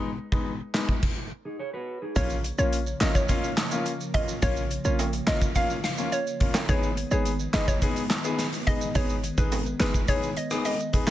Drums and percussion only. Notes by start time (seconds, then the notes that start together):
0.32 kick
0.74 snare, clap
0.89 kick
1.03 kick, crash
2.16 kick, closed hi-hat, maracas
2.30 maracas
2.44 closed hi-hat, maracas
2.58 maracas
2.73 closed hi-hat, maracas
2.87 maracas
3.01 snare, clap, closed hi-hat, maracas
3.15 kick, maracas
3.29 kick, closed hi-hat, maracas
3.44 maracas
3.57 snare, clap, closed hi-hat, maracas
3.71 maracas
3.86 closed hi-hat, maracas
4.01 maracas
4.14 kick, closed hi-hat
4.28 maracas
4.42 kick, closed hi-hat, maracas
4.56 maracas
4.71 closed hi-hat, maracas
4.85 maracas
4.99 closed hi-hat, high timbale, maracas
5.13 closed hi-hat, maracas
5.27 snare, clap, closed hi-hat, maracas
5.42 kick, maracas
5.55 kick, closed hi-hat, maracas
5.70 maracas
5.84 snare, closed hi-hat, maracas
5.98 maracas
6.12 closed hi-hat, maracas
6.27 maracas
6.40 kick, closed hi-hat
6.54 snare, clap, high timbale, maracas
6.69 kick, closed hi-hat, maracas
6.83 maracas
6.97 closed hi-hat, maracas
7.11 maracas
7.25 closed hi-hat, maracas
7.39 maracas
7.53 snare, clap, closed hi-hat, maracas
7.68 kick, maracas
7.81 kick, closed hi-hat, maracas
7.96 closed hi-hat, maracas
8.10 snare, clap, closed hi-hat, maracas
8.24 maracas
8.39 snare, closed hi-hat, maracas
8.53 closed hi-hat, maracas
8.67 kick, closed hi-hat
8.81 maracas
8.95 kick, closed hi-hat, maracas
9.09 maracas
9.24 closed hi-hat, maracas
9.37 kick, maracas
9.52 closed hi-hat, high timbale, maracas
9.66 maracas
9.80 snare, clap, closed hi-hat, maracas
9.94 kick, maracas
10.08 kick, closed hi-hat, maracas
10.23 maracas
10.37 closed hi-hat, maracas
10.51 cross-stick, maracas
10.65 closed hi-hat, high timbale, maracas
10.80 maracas
10.93 kick, closed hi-hat, maracas
11.07 snare, clap